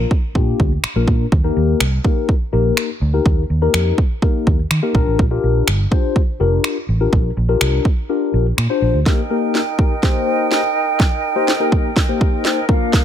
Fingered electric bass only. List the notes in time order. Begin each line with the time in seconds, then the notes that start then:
0.35 A#2
0.60 D2
0.84 muted fingered electric bass stroke
0.96 A#1
1.07 A#2
1.32 D#2
1.56 D#2
1.81 C2
2.53 A#1
3.01 D2
3.26 D#2
3.50 D#2
3.74 F2
4.47 D#2
4.71 D#3
4.95 A#1
5.07 A1
5.19 A#1
5.43 A#1
5.68 G1
6.40 F1
6.89 A1
7.13 A#1
7.37 A#1
7.61 C2
8.34 A#1
8.58 A#2
8.82 A#1
8.94 D2